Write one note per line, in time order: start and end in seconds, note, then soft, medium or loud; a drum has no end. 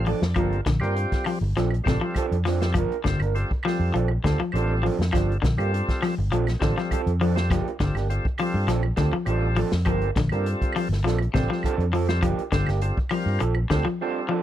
0.00 0.12 A1 medium
0.00 0.10 C4 medium
0.00 0.10 F4 medium
0.00 0.10 A4 medium
0.06 0.23 F3 medium
0.06 0.24 F3 medium
0.06 0.22 D4 medium
0.06 0.22 A4 medium
0.06 0.35 D5 medium
0.06 muted clean electric guitar stroke medium
0.06 open hi-hat medium
0.22 0.33 F2 loud
0.22 muted clean electric guitar stroke soft
0.22 snare medium
0.34 0.59 G1 medium
0.34 0.53 F3 medium
0.34 0.56 F3 medium
0.34 0.61 G3 medium
0.34 0.56 A#3 medium
0.34 0.61 C4 medium
0.34 0.56 D4 medium
0.34 0.61 F4 medium
0.34 0.61 A4 medium
0.34 kick medium
0.34 closed hi-hat medium
0.34 claves medium
0.39 0.56 A#4 medium
0.53 closed hi-hat soft
0.66 0.78 A#1 medium
0.66 0.83 D3 medium
0.66 muted clean electric guitar stroke soft
0.66 kick medium
0.66 snare medium
0.66 closed hi-hat soft
0.80 1.05 G2 medium
0.80 1.38 G3 medium
0.80 1.39 C4 medium
0.80 0.96 D4 soft
0.80 1.39 F4 medium
0.80 1.39 G4 medium
0.80 0.96 A#4 medium
0.80 closed hi-hat soft
0.80 claves medium
0.85 0.95 A#3 soft
0.96 muted clean electric guitar stroke soft
0.96 closed hi-hat medium
1.12 muted clean electric guitar stroke soft
1.12 kick medium
1.12 snare soft
1.12 closed hi-hat soft
1.24 1.43 F3 medium
1.24 muted clean electric guitar stroke soft
1.24 open hi-hat medium
1.24 claves medium
1.41 1.52 G1 medium
1.41 muted clean electric guitar stroke soft
1.56 1.79 A#1 medium
1.56 1.72 F3 medium
1.56 1.73 F3 medium
1.56 1.72 C4 medium
1.56 1.72 D4 medium
1.56 1.72 A4 medium
1.56 snare soft
1.56 closed hi-hat medium
1.71 muted clean electric guitar stroke medium
1.71 closed hi-hat soft
1.71 claves medium
1.84 1.98 A1 medium
1.84 1.96 C3 medium
1.84 2.02 F3 medium
1.84 2.26 G3 medium
1.84 2.27 C4 medium
1.84 2.02 C4 medium
1.84 2.26 F4 medium
1.84 2.27 A4 medium
1.84 kick medium
1.88 2.03 D4 medium
1.88 2.02 A4 medium
1.88 snare medium
1.88 closed hi-hat soft
2.01 2.18 F3 medium
2.01 muted clean electric guitar stroke soft
2.15 2.35 F3 medium
2.15 2.35 C4 medium
2.15 2.35 D4 medium
2.15 2.35 A4 medium
2.15 muted fingered electric bass stroke soft
2.15 kick medium
2.15 closed hi-hat medium
2.15 claves medium
2.32 2.76 F2 medium
2.32 closed hi-hat soft
2.45 2.62 F3 medium
2.45 2.62 C4 medium
2.45 2.62 D4 medium
2.45 snare soft
2.45 open hi-hat medium
2.61 2.75 G3 medium
2.61 2.75 C4 medium
2.61 2.75 F4 medium
2.61 2.75 A4 medium
2.61 muted clean electric guitar stroke soft
2.61 snare medium
2.61 closed hi-hat soft
2.74 2.87 G1 medium
2.74 2.91 F3 medium
2.74 2.94 F3 medium
2.74 2.94 A#3 medium
2.74 2.95 D4 medium
2.74 2.95 A#4 medium
2.74 kick loud
2.74 closed hi-hat medium
2.74 claves medium
2.91 muted fingered electric bass stroke soft
2.91 closed hi-hat soft
3.04 3.17 G1 medium
3.04 3.21 D3 medium
3.04 3.22 G3 medium
3.04 3.22 C4 medium
3.04 3.22 F4 medium
3.04 3.22 A4 medium
3.04 muted clean electric guitar stroke soft
3.04 kick medium
3.04 snare medium
3.04 closed hi-hat medium
3.20 3.43 G1 medium
3.20 3.35 A#3 soft
3.20 3.35 D4 medium
3.20 3.35 A#4 soft
3.20 closed hi-hat soft
3.20 claves medium
3.35 3.52 G3 medium
3.35 3.52 C4 medium
3.35 3.52 F4 medium
3.35 3.52 A4 medium
3.35 muted clean electric guitar stroke soft
3.35 closed hi-hat medium
3.51 muted clean electric guitar stroke soft
3.51 kick medium
3.63 3.81 F3 medium
3.63 3.95 G3 medium
3.63 3.94 C4 medium
3.63 3.94 F4 medium
3.63 3.95 A4 medium
3.63 muted clean electric guitar stroke soft
3.63 claves medium
3.67 snare soft
3.67 open hi-hat medium
3.80 3.90 F2 medium
3.80 muted clean electric guitar stroke soft
3.94 4.17 A#1 medium
3.94 4.11 F3 medium
3.94 4.10 F3 medium
3.94 4.10 C4 medium
3.94 4.11 D4 medium
3.94 4.10 A4 medium
3.94 closed hi-hat medium
4.08 muted clean electric guitar stroke soft
4.08 claves medium
4.24 4.36 D2 medium
4.24 4.33 D3 medium
4.24 4.40 F3 soft
4.24 4.41 G3 medium
4.24 4.40 C4 medium
4.24 4.41 C4 medium
4.24 4.40 D4 medium
4.24 4.41 F4 medium
4.24 4.40 A4 medium
4.24 4.42 A4 medium
4.24 kick medium
4.24 snare medium
4.24 closed hi-hat soft
4.39 4.56 F3 medium
4.39 muted fingered electric bass stroke soft
4.39 muted clean electric guitar stroke soft
4.52 4.88 A1 medium
4.52 4.73 F3 medium
4.52 4.86 G3 medium
4.52 4.86 C4 medium
4.52 4.73 C4 medium
4.52 4.73 D4 medium
4.52 4.86 F4 medium
4.52 4.86 A4 medium
4.52 4.73 A4 medium
4.52 closed hi-hat medium
4.52 claves medium
4.83 5.00 F3 medium
4.83 5.00 C4 medium
4.83 5.00 D4 medium
4.83 4.99 A4 medium
4.83 open hi-hat medium
4.99 5.09 F2 medium
4.99 muted clean electric guitar stroke soft
4.99 snare medium
5.12 5.36 G1 medium
5.12 5.29 F3 medium
5.12 5.32 F3 medium
5.12 5.38 G3 medium
5.12 5.37 C4 medium
5.12 5.32 D4 medium
5.12 5.37 F4 medium
5.12 5.38 A4 medium
5.12 muted clean electric guitar stroke medium
5.12 kick medium
5.12 snare soft
5.12 closed hi-hat medium
5.12 claves medium
5.32 closed hi-hat soft
5.42 5.55 A#1 medium
5.42 5.59 D3 medium
5.42 muted clean electric guitar stroke soft
5.42 kick medium
5.42 snare medium
5.42 closed hi-hat soft
5.57 5.81 G2 medium
5.57 6.15 G3 medium
5.57 5.72 A#3 soft
5.57 6.15 C4 medium
5.57 5.73 D4 soft
5.57 6.15 F4 medium
5.57 5.72 G4 medium
5.57 6.15 A4 medium
5.57 closed hi-hat soft
5.57 claves medium
5.73 muted clean electric guitar stroke soft
5.73 closed hi-hat medium
5.88 muted clean electric guitar stroke soft
5.88 kick medium
5.88 snare soft
5.88 closed hi-hat soft
6.02 6.19 F3 medium
6.02 muted clean electric guitar stroke soft
6.02 snare soft
6.02 open hi-hat medium
6.02 claves medium
6.18 6.29 G1 medium
6.18 muted clean electric guitar stroke soft
6.31 6.54 A#1 medium
6.31 6.48 F3 medium
6.31 6.48 C4 medium
6.31 6.47 D4 medium
6.31 6.47 A4 medium
6.31 closed hi-hat medium
6.47 muted clean electric guitar stroke soft
6.47 snare soft
6.47 closed hi-hat soft
6.47 claves medium
6.59 6.73 A1 medium
6.59 6.71 D3 medium
6.59 6.77 F3 medium
6.59 7.02 G3 medium
6.59 7.02 C4 medium
6.59 6.77 D4 medium
6.59 7.02 F4 medium
6.59 7.02 A4 medium
6.59 6.77 A4 medium
6.59 kick medium
6.59 snare medium
6.59 closed hi-hat soft
6.78 6.94 F3 medium
6.78 muted clean electric guitar stroke soft
6.78 snare soft
6.91 7.10 F3 medium
6.91 7.10 C4 medium
6.91 7.10 A4 medium
6.91 muted fingered electric bass stroke soft
6.91 kick medium
6.91 closed hi-hat medium
6.91 claves medium
7.07 7.53 F2 medium
7.07 closed hi-hat soft
7.21 7.36 F3 medium
7.21 7.38 F3 medium
7.21 7.36 C4 medium
7.21 7.36 D4 medium
7.21 7.37 A4 medium
7.21 open hi-hat medium
7.35 7.50 G3 medium
7.35 7.50 C4 medium
7.35 7.50 F4 medium
7.35 7.50 A4 medium
7.35 muted clean electric guitar stroke soft
7.35 snare medium
7.35 closed hi-hat soft
7.51 7.63 G1 medium
7.51 7.69 F3 medium
7.51 7.68 F3 medium
7.51 7.69 A#3 medium
7.51 7.69 D4 medium
7.51 7.69 G4 medium
7.51 kick loud
7.51 snare soft
7.51 closed hi-hat medium
7.51 claves medium
7.65 muted fingered electric bass stroke soft
7.65 closed hi-hat soft
7.80 7.92 G1 loud
7.80 7.97 D3 medium
7.80 7.97 G3 medium
7.80 7.97 C4 medium
7.80 7.97 F4 medium
7.80 7.97 A4 medium
7.80 muted clean electric guitar stroke soft
7.80 kick medium
7.80 snare medium
7.80 closed hi-hat medium
7.95 8.18 G1 medium
7.95 8.09 A#3 soft
7.95 8.09 D4 soft
7.95 8.09 G4 soft
7.95 snare soft
7.95 closed hi-hat soft
7.95 claves medium
8.10 8.27 G3 medium
8.10 8.27 C4 medium
8.10 8.27 F4 medium
8.10 8.27 A4 medium
8.10 muted clean electric guitar stroke soft
8.10 closed hi-hat medium
8.25 muted clean electric guitar stroke soft
8.25 kick medium
8.38 8.56 F3 medium
8.38 8.68 G3 medium
8.38 8.69 C4 medium
8.38 8.69 F4 medium
8.38 8.69 A4 medium
8.38 muted clean electric guitar stroke soft
8.38 open hi-hat medium
8.38 claves medium
8.54 8.65 G2 medium
8.54 muted clean electric guitar stroke soft
8.67 8.90 A#1 medium
8.67 8.85 F3 medium
8.67 8.84 C4 medium
8.67 8.83 D4 medium
8.67 8.83 A4 medium
8.67 snare soft
8.67 closed hi-hat medium
8.83 muted clean electric guitar stroke soft
8.83 claves medium
8.96 9.10 D2 medium
8.96 9.07 D3 medium
8.96 9.14 F3 medium
8.96 9.14 G3 medium
8.96 9.14 C4 medium
8.96 9.15 C4 medium
8.96 9.14 F4 medium
8.96 9.14 A4 medium
8.96 muted clean electric guitar stroke medium
8.96 kick medium
8.96 snare medium
8.96 closed hi-hat soft
9.13 9.30 F3 medium
9.13 muted fingered electric bass stroke soft
9.13 muted clean electric guitar stroke soft
9.25 9.61 A1 medium
9.25 9.46 F3 medium
9.25 9.59 G3 medium
9.25 9.59 C4 medium
9.25 9.47 C4 medium
9.25 9.47 D4 medium
9.25 9.60 F4 medium
9.25 9.60 A4 loud
9.25 closed hi-hat medium
9.25 claves medium
9.29 9.47 A4 medium
9.56 9.73 F3 medium
9.56 9.73 C4 medium
9.56 9.73 D4 medium
9.56 9.72 A4 loud
9.56 open hi-hat medium
9.72 9.83 F2 loud
9.72 muted clean electric guitar stroke medium
9.72 snare medium
9.85 10.09 G1 medium
9.85 10.03 F3 medium
9.85 10.06 F3 medium
9.85 10.11 G3 medium
9.85 10.06 A#3 medium
9.85 10.11 C4 medium
9.85 10.06 D4 medium
9.85 10.11 F4 medium
9.85 10.11 A4 medium
9.85 10.06 A#4 loud
9.85 kick loud
9.85 closed hi-hat medium
9.85 claves medium
10.01 closed hi-hat soft
10.16 10.28 A#1 loud
10.16 10.34 D3 medium
10.16 muted clean electric guitar stroke soft
10.16 kick medium
10.16 snare medium
10.16 closed hi-hat soft
10.29 10.53 G2 medium
10.29 10.88 G3 medium
10.29 10.88 C4 medium
10.29 10.47 D4 medium
10.29 10.88 F4 medium
10.29 10.89 A4 loud
10.29 10.46 A#4 medium
10.29 closed hi-hat soft
10.29 claves medium
10.34 10.46 A#3 soft
10.46 muted clean electric guitar stroke soft
10.46 closed hi-hat medium
10.62 muted clean electric guitar stroke medium
10.62 kick medium
10.62 closed hi-hat soft
10.73 10.92 F3 medium
10.73 muted clean electric guitar stroke soft
10.73 open hi-hat medium
10.73 claves medium
10.89 11.00 G1 medium
10.89 muted clean electric guitar stroke soft
10.89 snare soft
11.03 11.26 A#1 medium
11.03 11.21 F3 medium
11.03 11.21 C4 medium
11.03 11.21 D4 medium
11.03 11.20 A4 medium
11.07 snare soft
11.07 closed hi-hat medium
11.19 muted clean electric guitar stroke soft
11.19 closed hi-hat soft
11.19 claves medium
11.34 11.47 A1 medium
11.34 11.43 C3 medium
11.34 11.50 F3 medium
11.34 11.75 G3 medium
11.34 11.75 C4 medium
11.34 11.51 C4 medium
11.34 11.50 D4 medium
11.34 11.76 F4 medium
11.34 11.76 A4 medium
11.34 11.50 A4 medium
11.34 kick medium
11.34 snare medium
11.34 closed hi-hat soft
11.50 11.67 F3 medium
11.50 snare soft
11.63 11.83 F3 medium
11.63 11.83 C4 medium
11.63 11.83 D4 medium
11.63 11.83 A4 loud
11.63 muted fingered electric bass stroke soft
11.63 kick medium
11.63 closed hi-hat medium
11.63 claves medium
11.78 12.24 F2 medium
11.78 closed hi-hat soft
11.93 12.10 F3 medium
11.93 12.09 F3 medium
11.93 12.09 C4 medium
11.93 12.09 A4 loud
11.93 open hi-hat medium
12.08 12.23 G3 medium
12.08 12.23 C4 medium
12.08 12.23 F4 medium
12.08 12.23 A4 medium
12.08 muted clean electric guitar stroke medium
12.08 snare medium
12.08 closed hi-hat soft
12.22 12.35 G1 medium
12.22 12.39 F3 medium
12.22 12.41 F3 medium
12.22 12.42 A#3 medium
12.22 12.42 D4 medium
12.22 12.42 G4 loud
12.22 kick medium
12.22 closed hi-hat medium
12.22 claves medium
12.38 muted fingered electric bass stroke soft
12.38 closed hi-hat soft
12.52 12.64 G1 loud
12.52 12.69 D3 medium
12.52 12.69 G3 loud
12.52 12.70 C4 medium
12.52 12.70 F4 medium
12.52 12.70 A4 loud
12.52 muted clean electric guitar stroke soft
12.52 kick medium
12.52 snare medium
12.52 closed hi-hat medium
12.67 12.90 G1 medium
12.67 12.82 A#3 soft
12.67 12.81 D4 soft
12.67 12.82 G4 medium
12.67 snare soft
12.67 closed hi-hat soft
12.67 claves medium
12.81 12.99 G3 medium
12.81 12.99 C4 medium
12.81 12.99 F4 medium
12.81 12.99 A4 medium
12.81 closed hi-hat medium
12.97 muted clean electric guitar stroke soft
12.97 kick medium
13.09 13.28 F3 medium
13.09 13.41 G3 medium
13.09 13.41 C4 medium
13.09 13.41 F4 medium
13.09 13.41 A#4 loud
13.09 muted clean electric guitar stroke soft
13.09 open hi-hat medium
13.09 claves medium
13.26 13.37 G2 medium
13.26 muted clean electric guitar stroke soft
13.40 13.64 A#1 medium
13.40 13.56 F3 medium
13.40 13.56 A4 medium
13.40 muted clean electric guitar stroke medium
13.40 closed hi-hat medium
13.55 muted clean electric guitar stroke medium
13.55 claves medium
13.70 13.82 D2 medium
13.70 13.79 D3 medium
13.70 13.87 F3 medium
13.70 13.87 G3 medium
13.70 13.88 C4 medium
13.70 13.87 C4 medium
13.70 13.87 D4 medium
13.70 13.88 F4 medium
13.70 13.88 A4 medium
13.70 13.87 A4 medium
13.70 kick medium
13.70 snare medium
13.70 closed hi-hat soft
13.85 14.02 F3 medium
13.85 muted fingered electric bass stroke soft
13.85 muted clean electric guitar stroke soft
14.01 14.19 F3 medium
14.01 14.33 G3 medium
14.01 14.19 C4 medium
14.01 14.33 C4 medium
14.01 14.20 D4 medium
14.01 14.33 F4 medium
14.01 14.19 A4 medium
14.01 14.34 A4 medium
14.29 14.43 F3 medium
14.29 14.43 C4 medium
14.29 14.43 D4 loud
14.29 14.43 A4 medium